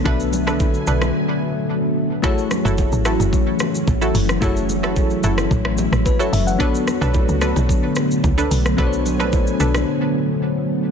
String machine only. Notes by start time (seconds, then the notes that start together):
Already playing: D3 F#3 A3 B3
0.06 G#5
2.24 E3 A3 C#4 F#4
4.42 E4
6.60 D3 A3 B3 F#4
8.78 G#5